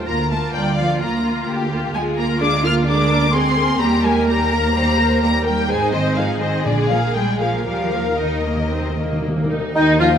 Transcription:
0.07 D2 A#3 F4 A#4 A#5
0.31 A3 A#3 F4 A5
0.54 D2 G3 D5 G5
0.78 F3 A#3 F4 F5
1.01 D2 A#3 F4 A#5
1.26 A#3 F4
1.48 D2 G4
1.72 A#3 F4
1.94 D2 G#3 F4 G#4 G#5
2.18 A#3 A#4 A#5
2.41 G#3 D4 G#4 D6
2.65 A#3 F4 A#4 F6
2.88 G#3 D4 G#4 A#4 D6
3.11 A#3 A#4
3.34 G#3 C4 G#4 C6
3.58 A#3 A#4
3.81 D#2 G3 A#3 G4 A#5
4.05 G#3 A#3 A#4 G#5
4.28 G3 A#3 G4 A#4 A#5
4.52 A#3 A#4
4.75 G3 G4 C5
4.99 A#3 A#4
5.23 G3 A#3 G4 A#4 A#5
5.46 G3 A#3 A#4 G5
5.69 G#1 G#3 D#4 G#4 C5 G#5
5.92 D#3 C4 C5 D#5
6.16 F3 D#4 G#4 F5
6.41 D#3 C4 C5 D#5
6.65 A#1 A#2 D3 G#3 G#4 D5
6.89 F3 A#3 A#4 F5
7.14 G3 G#3 G#4 G5
7.40 F3 A#3 A#4 F5
7.66 D#2 D#3 F3 G3 G4 A#4 F5
7.76 D#3
7.84 D#3
7.92 D#3 A#3 A#4
8.00 D#3
8.08 D#3
8.19 D#3 D#4 D#5
8.24 D#3
8.33 D#3
8.40 D#3
8.46 D#3 A#3
8.56 D#3
8.64 D#3
8.72 D#3 C4
8.81 D#3
8.89 D#3
8.97 D#3 A#3
9.05 D#3
9.13 D#3
9.21 D#3
9.28 D#3
9.36 D#3
9.44 D#3
9.50 D#3 D#4
9.60 D#3
9.75 D#2 D#3 D#4 D#5 G5
9.99 F3 F4 F5

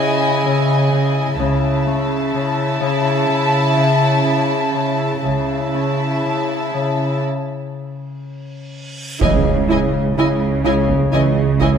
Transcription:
Already playing: C#3 C#4 E4 D#5 G#5
0.00 C#3
0.46 C#3
0.92 C#3
1.38 C#2 C#3 E4 E5 A5
1.86 C#4
2.34 C#3
2.80 C#3
3.28 C#3
3.77 C#3
4.24 C#3
4.74 C#3
5.23 C#2 C#3 E4 E5 A5, reverse cymbal
5.74 C#4
6.25 C#3
6.74 C#3
9.21 C#2 C#3 E3 E4 D#5 G#5, taiko, impact
9.69 C#3 E4 D#5 G#5
10.16 C#2 C#3 E4 D#5 G#5
10.64 C#3 E4 D#5 G#5
10.88 taiko
11.11 C#2 C#3 E3 C#4 E4 D#5 G#5
11.60 C#3 E4 D#5 G#5, taiko

